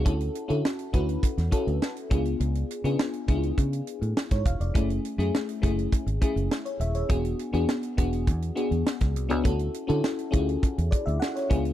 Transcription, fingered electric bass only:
X:1
M:4/4
L:1/16
Q:1/4=102
K:Dlyd
V:1 name="Fingered electric bass" clef=bass
D,,2 z D, z2 D,,2 z E,, z D,, z2 C,,2 | C,,2 z C, z2 C,,2 C,2 z A,, z G,, E,,, ^E,,, | F,,,2 z F,, z2 F,,,2 z G,,, z F,,, z2 ^D,,,2 | E,,,2 z E,, z2 E,,,2 E,,2 z E,, z C,, ^B,,, C,, |
D,,2 z D, z2 D,,2 z E,, z D,, z2 C,,2 |]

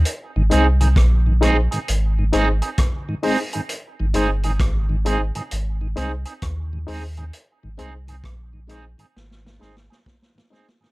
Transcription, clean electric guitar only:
X:1
M:4/4
L:1/16
Q:"Swing 16ths" 1/4=66
K:Ab
V:1 name="Clean electric guitar"
z2 [CEA] [CEA] z2 [CEA] [CEA] z2 [CEA] [CEA] z2 [CEA] [CEA] | z2 [CEA] [CEA] z2 [CEA] [CEA] z2 [CEA] [CEA] z2 [CEA] [CEA] | z2 [CEA] [CEA] z2 [CEA] [CEA] z2 [CEA] [CEA] z2 [CEA] [CEA] |]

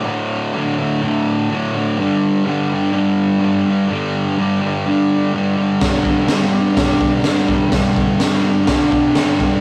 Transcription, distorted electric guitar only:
X:1
M:4/4
L:1/8
Q:1/4=125
K:G
V:1 name="Distorted electric guitar" clef=bass
[D,,A,,D,]2 [D,,A,,D,] [A,,D,] [D,,A,,D,]2 [D,,A,,D,] [A,,D,] | [G,,D,G,]2 [G,,D,G,] [D,G,] [G,,D,G,]2 [G,,D,G,] [D,G,] | [G,,D,G,]2 [G,,D,G,] [D,G,] [G,,D,G,]2 [G,,D,G,] [D,G,] | [G,,D,G,]2 [G,,D,G,] [D,G,] [G,,D,G,]2 [G,,D,G,] [D,G,] |
[G,,D,G,]2 [G,,D,G,] [D,G,] [G,,D,G,]2 [G,,D,G,] [D,G,] |]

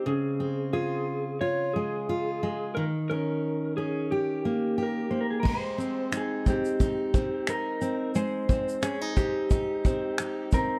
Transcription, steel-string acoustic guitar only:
X:1
M:4/4
L:1/16
Q:"Swing 16ths" 1/4=89
K:Ab
V:1 name="Steel-string acoustic guitar"
D,2 C2 F4 F2 A,2 F2 A,2 | E,2 D4 D2 G2 B,2 G2 B,2 | A,2 C2 E2 C2 E2 C2 E2 C2 | A,2 C2 D E C2 E2 C2 E2 C2 |]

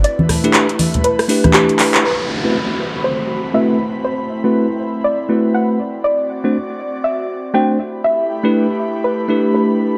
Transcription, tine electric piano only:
X:1
M:4/4
L:1/16
Q:"Swing 16ths" 1/4=120
K:Ador
V:1 name="Tine electric piano"
z3 [A,DEGB]2 z4 z [A,DEGB]6 | z3 [A,CEFB] z8 [A,CEFB]2 z2 | z3 [A,CEFB]2 z4 z [A,CEFB]4 z2 | z3 [A,CDFc] z8 [A,CDFc]2 z2 |
z3 [A,DEGB]2 z4 z [A,DEGB]6 |]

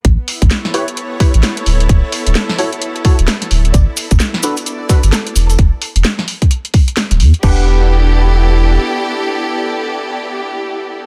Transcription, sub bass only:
X:1
M:4/4
L:1/16
Q:"Swing 16ths" 1/4=130
K:Edor
V:1 name="Sub bass" clef=bass
A,,, z2 A,,, z6 z A,,, z2 D,,,2 | D,,, z2 D,,, z6 z D,,, z2 D,,,2 | G,,, z2 G,,, z6 z G,,, z2 E,,,2 | E,,, z2 E,,, z8 z D,,, E,, z |
E,,,12 z4 | z16 |]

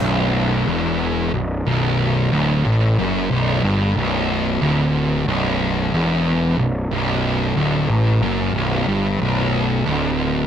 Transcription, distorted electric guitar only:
X:1
M:4/4
L:1/8
Q:1/4=92
K:Bm
V:1 name="Distorted electric guitar" clef=bass
B,,,2 E,,2 B,,, B,,,2 D,, | A,, F,, B,,, G,, B,,,2 D,,2 | B,,,2 E,,2 B,,, B,,,2 D,, | A,, F,, B,,, G,, B,,,2 D,,2 |]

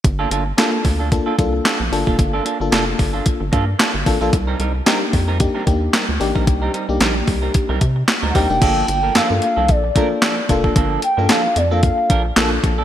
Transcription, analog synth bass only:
X:1
M:4/4
L:1/16
Q:"Swing 16ths" 1/4=112
K:Gm
V:1 name="Analog synth bass" clef=bass
G,,,2 G,,,2 z2 D,,3 z C,,2 z B,,, G,,, F,,, | G,,,2 z G,,, F,,,2 G,,,2 z G,,, G,,2 z G,,, A,,, B,,, | C,,2 C,,2 z2 F,,3 z E,,2 z D,, A,,, B,,, | C,,2 z C,, B,,,2 C,,2 z C,, C,2 z D,, E,, F,,, |
G,,,2 G,,,2 G,, G,, z C,, B,,,2 z4 F,,,2 | G,,,2 z G,, z2 F,,3 z B,,,2 B,,,2 B,,,2 |]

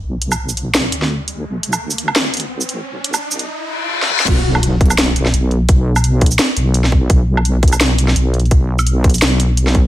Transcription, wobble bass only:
X:1
M:4/4
L:1/8
Q:"Swing 16ths" 1/4=170
K:Bphr
V:1 name="Wobble bass" clef=bass
B,,,2 B,,,3 D,,3 | B,,,2 D,,6 | B,,,2 C,,2 z4 | B,,,6 B,,,2- |
B,,,4 z B,,,3 | B,,,6 B,,,2- | B,,,4 B,,,4 |]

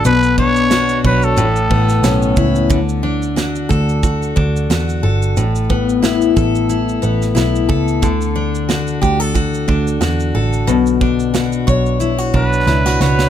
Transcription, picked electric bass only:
X:1
M:4/4
L:1/8
Q:"Swing 16ths" 1/4=90
K:D
V:1 name="Picked electric bass" clef=bass
B,,,3 B,,, A,,, A,,, B,,, C,, | D,,3 D,,2 D,, E,, G,,, | A,,,3 A,,,2 A,,, B,,, C,, | D,,3 D,,2 D,, E,, A,,, |
B,,,3 B,,,2 B,,, C,, C,, |]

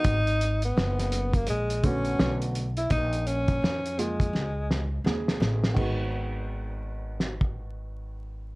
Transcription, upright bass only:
X:1
M:4/4
L:1/8
Q:"Swing 16ths" 1/4=84
K:G#m
V:1 name="Upright bass" clef=bass
G,,,2 F,,,2 A,,,2 B,,,2 | A,,,2 ^E,,2 C,,2 D,, =A,,, | G,,,8 |]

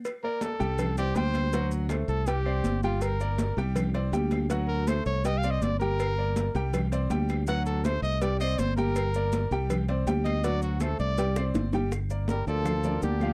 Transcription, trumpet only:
X:1
M:4/4
L:1/8
Q:1/4=162
K:Gm
V:1 name="Trumpet"
z B A3 G c2- | c z2 A G3 F | B3 z4 z | z B c ^c (3e f e d B- |
B4 z4 | ^f A c e d e c B- | B4 z3 e | d ^F A d3 z2 |
z2 B A3 G2 |]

